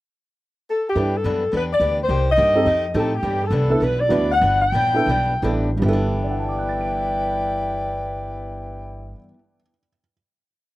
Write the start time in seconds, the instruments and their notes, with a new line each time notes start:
0.70 saxophone section A4
0.89 saxophone section G4
0.95 upright bass G2, steel-string acoustic guitar G2 E3 B3 D4, grand piano D4 E4 A4 B4
1.16 saxophone section A4
1.24 upright bass F#2, steel-string acoustic guitar G2 E3 B3 D4
1.52 upright bass E2, steel-string acoustic guitar E3 B3 D4 G4
1.57 saxophone section B4
1.73 saxophone section D5
1.80 upright bass D2, steel-string acoustic guitar E3 B3 D4 G4
2.02 saxophone section C5
2.08 upright bass C2, steel-string acoustic guitar C3 A#3 D#4 G4
2.31 saxophone section D#5
2.36 upright bass G2, steel-string acoustic guitar C3 A#3 D#4 G4
2.55 grand piano C4 D#4 G4 A4
2.65 upright bass F2, steel-string acoustic guitar F3 A3 D#4 G4
2.94 upright bass A2, steel-string acoustic guitar F3 A3 D#4 G4, grand piano C4 D#4 G4 A4, saxophone section A4
3.15 saxophone section G4
3.23 upright bass G2, steel-string acoustic guitar G2 E3 B3 D4
3.44 saxophone section A4
3.50 upright bass C2, steel-string acoustic guitar G2 E3 B3 D4
3.70 grand piano B3 D4 E4 A4
3.80 upright bass B1, steel-string acoustic guitar G2 E3 B3 D4, saxophone section B4
4.00 saxophone section D5
4.09 upright bass D2, steel-string acoustic guitar G2 E3 B3 D4, grand piano B3 D4 E4 F#4
4.32 saxophone section F#5
4.41 upright bass G1, steel-string acoustic guitar G2 E3 B3 D4
4.62 saxophone section G5
4.72 upright bass A#1, steel-string acoustic guitar G2 E3 B3 D4
4.94 grand piano B3 D4 E4 A4
5.06 upright bass B1, steel-string acoustic guitar G2 E3 B3 D4
5.42 upright bass A1, steel-string acoustic guitar G2 E3 B3 D4, grand piano B3 D4 E4 A4
5.77 grand piano G2 G3, steel-string acoustic guitar G2
5.82 upright bass G1, steel-string acoustic guitar E3, grand piano B3 E4, saxophone section E4 B4 D5 G5
5.88 steel-string acoustic guitar B3, grand piano A4
5.93 steel-string acoustic guitar D4
6.23 grand piano D5
6.31 grand piano F#5
6.39 grand piano A5
6.49 grand piano D6
6.59 grand piano F#6
6.69 grand piano A6
6.81 grand piano D7